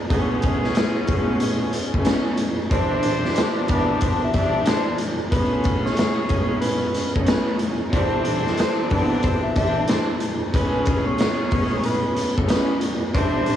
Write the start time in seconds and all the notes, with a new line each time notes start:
0.10 E3 G#3 A3 B3 C#4 G#4, kick, closed hi-hat
0.42 kick, closed hi-hat
0.64 snare
0.75 snare, closed hi-hat
1.07 G#3 A3 B3 C#4, kick, closed hi-hat
1.40 closed hi-hat
1.73 closed hi-hat
1.94 G#3 A3 B3 C#4, kick
2.05 snare, closed hi-hat
2.38 closed hi-hat
2.71 E3 G3 C4 D4 G4 C5, kick, closed hi-hat
3.03 closed hi-hat
3.25 snare
3.36 snare, closed hi-hat
3.68 E3 B3 C4 D4 B4, kick, closed hi-hat
4.01 C5, kick, closed hi-hat
4.24 E5
4.34 E3 G3 C4 D4 E5, kick, closed hi-hat
4.66 C5, snare, closed hi-hat
4.98 closed hi-hat
5.31 E3 G#3 A3 B3 C#4 G#4 B4, kick, closed hi-hat
5.64 kick, closed hi-hat
5.85 C#5, snare
5.97 snare, closed hi-hat
6.29 G#3 A3 B3 C#4, kick, closed hi-hat
6.61 B4, closed hi-hat
6.95 closed hi-hat
7.16 G#3 A3 B3 C#4 A4, kick
7.27 B4, snare, closed hi-hat
7.59 closed hi-hat
7.93 E3 G3 C4 D4 A4 C5, kick, closed hi-hat
8.25 closed hi-hat
8.47 snare
8.57 snare, closed hi-hat
8.90 E3 B3 C4 D4 B4, kick, open hi-hat
9.23 C5, kick, closed hi-hat
9.43 E5
9.56 E3 G3 C4 D4 E5, kick, closed hi-hat
9.88 C5, snare, closed hi-hat
10.20 closed hi-hat
10.53 E3 G#3 A3 B3 C#4 G#4 B4, kick, closed hi-hat
10.86 kick, closed hi-hat
11.07 C#5
11.18 snare, closed hi-hat
11.51 G#3 A3 B3 C#4, kick, open hi-hat
11.84 B4, closed hi-hat
12.16 closed hi-hat
12.37 G#3 A3 B3 C#4 A4, kick
12.48 B4, snare, closed hi-hat
12.81 closed hi-hat
13.15 E3 G3 C4 D4 G4 C5, kick, closed hi-hat
13.46 closed hi-hat